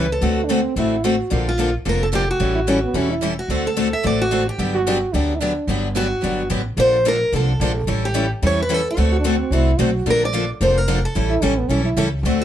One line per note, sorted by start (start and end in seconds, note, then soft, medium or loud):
0.00 0.18 C#2 medium
0.00 0.12 B4 medium
0.12 0.37 A4 medium
0.21 0.65 D2 medium
0.21 0.40 D3 medium
0.21 0.40 A3 medium
0.21 0.40 C4 medium
0.21 0.41 F#4 medium
0.21 0.40 A4 medium
0.37 0.46 F#4 medium
0.44 0.52 D4 medium
0.49 0.59 D3 medium
0.49 0.59 A3 medium
0.49 0.60 C4 medium
0.49 0.77 C4 medium
0.49 0.60 F#4 medium
0.49 0.60 A4 medium
0.76 1.20 A1 medium
0.76 0.95 D3 medium
0.76 0.95 A3 medium
0.76 0.95 C4 medium
0.76 1.06 E4 medium
0.76 0.95 F#4 medium
0.76 0.95 A4 medium
1.04 1.14 D3 medium
1.04 1.14 A3 medium
1.04 1.14 C4 medium
1.04 1.39 F#4 medium
1.04 1.15 F#4 medium
1.04 1.15 A4 medium
1.30 1.75 A#1 medium
1.30 1.49 D3 medium
1.30 1.49 F3 medium
1.30 1.49 A#3 medium
1.30 1.50 D4 medium
1.30 1.50 A4 medium
1.49 1.73 F4 medium
1.59 1.69 D3 medium
1.59 1.69 F3 medium
1.59 1.69 A#3 medium
1.59 1.69 D4 medium
1.59 1.69 A4 medium
1.85 2.30 F1 medium
1.85 2.04 D3 medium
1.85 2.04 F3 medium
1.85 2.04 A#3 medium
1.85 2.04 D4 medium
1.85 2.05 A4 medium
1.85 2.02 A#4 medium
2.03 2.08 A4 medium
2.13 2.23 D3 medium
2.13 2.23 F3 medium
2.13 2.23 A#3 medium
2.13 2.23 D4 medium
2.13 2.30 G4 medium
2.13 2.24 A4 medium
2.31 3.08 F#4 medium
2.40 2.84 A1 medium
2.40 2.59 E3 medium
2.40 2.59 G3 medium
2.40 2.59 C#4 medium
2.40 2.59 E4 medium
2.40 2.59 A4 medium
2.55 2.60 E4 medium
2.67 2.78 E3 medium
2.67 2.78 G3 medium
2.67 2.78 C#4 medium
2.67 2.83 C#4 medium
2.67 2.78 E4 medium
2.67 2.78 A4 medium
2.84 2.98 B3 medium
2.94 3.38 E1 medium
2.94 3.13 E3 medium
2.94 3.14 G3 medium
2.94 3.13 C#4 medium
2.94 3.12 C#4 medium
2.94 3.14 E4 medium
2.94 3.14 A4 medium
3.10 3.30 E4 medium
3.22 3.33 E3 medium
3.22 3.33 G3 medium
3.22 3.33 C#4 medium
3.22 3.33 E4 medium
3.22 3.33 A4 medium
3.39 3.67 F#4 medium
3.48 3.93 D2 medium
3.48 3.68 D3 medium
3.48 3.68 A3 medium
3.48 3.69 C4 medium
3.48 3.69 F#4 medium
3.48 3.69 A4 medium
3.67 3.94 A4 medium
3.76 3.87 D3 medium
3.76 3.87 A3 medium
3.76 3.87 C4 medium
3.76 3.87 F#4 medium
3.76 3.88 A4 medium
3.93 4.05 E5 medium
4.03 4.48 A1 medium
4.03 4.22 D3 medium
4.03 4.23 A3 medium
4.03 4.23 C4 medium
4.03 4.23 F#4 medium
4.03 4.23 A4 medium
4.03 4.22 D5 medium
4.22 4.46 F#4 medium
4.31 4.42 D3 medium
4.31 4.42 A3 medium
4.31 4.42 C4 medium
4.31 4.42 F#4 medium
4.31 4.43 A4 medium
4.49 4.74 G4 medium
4.58 5.03 G1 medium
4.58 4.78 D3 medium
4.58 4.78 F#3 medium
4.58 4.78 B3 medium
4.58 4.78 D4 medium
4.58 4.78 G4 medium
4.74 5.15 F#4 medium
4.87 4.97 D3 medium
4.87 4.97 F#3 medium
4.87 4.97 B3 medium
4.87 4.98 D4 medium
4.87 4.97 G4 medium
5.13 5.58 D2 medium
5.13 5.33 D3 medium
5.13 5.33 F#3 medium
5.13 5.33 B3 medium
5.13 5.36 D4 medium
5.13 5.33 D4 medium
5.13 5.33 G4 medium
5.35 5.41 E4 medium
5.39 5.52 D3 medium
5.39 5.52 F#3 medium
5.39 5.52 B3 medium
5.39 5.68 D4 medium
5.39 5.52 D4 medium
5.39 5.52 G4 medium
5.67 6.12 G1 medium
5.67 5.87 D3 medium
5.67 5.87 F#3 medium
5.67 5.88 B3 medium
5.67 5.88 D4 medium
5.67 5.88 G4 medium
5.96 6.06 D3 medium
5.96 6.06 F#3 medium
5.96 6.07 B3 medium
5.96 6.07 D4 medium
5.96 6.48 F#4 medium
5.96 6.07 G4 medium
6.23 6.47 G1 medium
6.23 6.42 D3 medium
6.23 6.42 F#3 medium
6.23 6.42 B3 medium
6.23 6.42 D4 medium
6.23 6.43 G4 medium
6.50 6.74 A1 medium
6.50 6.61 D3 medium
6.50 6.61 F#3 medium
6.50 6.61 B3 medium
6.50 6.61 D4 medium
6.50 6.61 G4 medium
6.77 7.21 A#1 medium
6.77 6.96 D3 medium
6.77 6.96 F3 medium
6.77 6.97 A#3 medium
6.77 6.96 D4 medium
6.77 6.97 A4 medium
6.77 7.07 C5 medium
7.05 7.16 D3 medium
7.05 7.16 F3 medium
7.05 7.16 A#3 medium
7.05 7.16 D4 medium
7.05 7.16 A4 medium
7.05 7.35 A#4 medium
7.32 7.56 C2 medium
7.32 7.51 D3 medium
7.32 7.52 F3 medium
7.32 7.52 A#3 medium
7.32 7.52 D4 medium
7.32 7.52 A4 medium
7.32 7.74 A4 medium
7.60 7.83 A#1 medium
7.60 7.71 D3 medium
7.60 7.71 F3 medium
7.60 7.71 A#3 medium
7.60 7.71 D4 medium
7.60 7.71 A4 medium
7.87 8.31 A1 medium
7.87 8.06 E3 medium
7.87 8.06 G3 medium
7.87 8.06 C#4 medium
7.87 8.06 E4 medium
7.87 8.06 A4 medium
8.05 8.30 G4 medium
8.14 8.25 E3 medium
8.14 8.25 G3 medium
8.14 8.25 C#4 medium
8.14 8.25 E4 medium
8.14 8.25 A4 loud
8.42 8.86 E2 medium
8.42 8.61 E3 medium
8.42 8.61 G3 medium
8.42 8.61 C#4 medium
8.42 8.61 E4 medium
8.42 8.61 A4 medium
8.47 8.60 C#5 medium
8.62 8.74 B4 medium
8.69 8.80 E3 medium
8.69 8.80 G3 medium
8.69 8.80 C#4 medium
8.69 8.80 E4 medium
8.69 8.80 A4 medium
8.74 8.87 A4 medium
8.91 9.66 F#4 medium
8.97 9.41 D2 medium
8.97 9.15 D3 medium
8.97 9.15 A3 medium
8.97 9.16 C4 medium
8.97 9.16 F#4 medium
8.97 9.16 A4 medium
9.11 9.14 F#4 medium
9.19 9.24 D4 medium
9.24 9.35 D3 medium
9.24 9.35 A3 medium
9.24 9.55 C4 medium
9.24 9.35 C4 medium
9.24 9.35 F#4 medium
9.24 9.35 A4 medium
9.51 9.74 C2 medium
9.51 9.70 D3 medium
9.51 9.71 A3 medium
9.51 9.71 C4 medium
9.51 9.80 E4 medium
9.51 9.71 F#4 medium
9.51 9.71 A4 medium
9.79 10.02 B1 medium
9.79 9.89 D3 medium
9.79 9.89 A3 medium
9.79 9.90 C4 medium
9.79 10.14 F#4 medium
9.79 9.89 F#4 medium
9.79 9.90 A4 medium
10.06 10.50 A#1 medium
10.06 10.25 D3 medium
10.06 10.25 F3 medium
10.06 10.25 A#3 medium
10.06 10.25 D4 medium
10.06 10.25 A4 medium
10.10 10.24 A#4 medium
10.25 10.49 D5 medium
10.33 10.44 D3 medium
10.33 10.44 F3 medium
10.33 10.44 A#3 medium
10.33 10.44 D4 medium
10.33 10.44 A4 medium
10.61 11.04 F1 medium
10.61 10.79 D3 medium
10.61 10.79 F3 medium
10.61 10.79 A#3 medium
10.61 10.80 D4 medium
10.61 10.80 A4 medium
10.61 10.78 C5 medium
10.78 11.05 A#4 medium
10.88 10.98 D3 medium
10.88 10.98 F3 medium
10.88 10.98 A#3 medium
10.88 10.99 D4 medium
10.88 10.99 A4 medium
11.05 11.30 A4 medium
11.15 11.37 A1 medium
11.15 11.34 E3 medium
11.15 11.34 G3 medium
11.15 11.34 C#4 medium
11.15 11.34 E4 medium
11.15 11.34 A4 medium
11.30 11.44 E4 medium
11.42 11.66 A1 medium
11.42 11.53 E3 medium
11.42 11.53 G3 medium
11.42 11.53 C#4 medium
11.42 11.59 C#4 medium
11.42 11.53 E4 medium
11.42 11.53 A4 medium
11.58 11.70 B3 medium
11.69 11.92 B1 medium
11.69 11.88 E3 medium
11.69 11.89 G3 medium
11.69 11.84 C#4 medium
11.69 11.89 C#4 medium
11.69 11.89 E4 medium
11.69 11.89 A4 medium
11.85 12.03 E4 medium
11.97 12.20 C#2 medium
11.97 12.07 E3 medium
11.97 12.08 G3 medium
11.97 12.08 C#4 medium
11.97 12.08 E4 medium
11.97 12.08 A4 medium
12.23 12.44 D2 medium
12.23 12.43 D3 medium
12.23 12.43 A3 medium
12.23 12.44 C4 medium
12.23 12.44 F#4 medium
12.23 12.44 A4 medium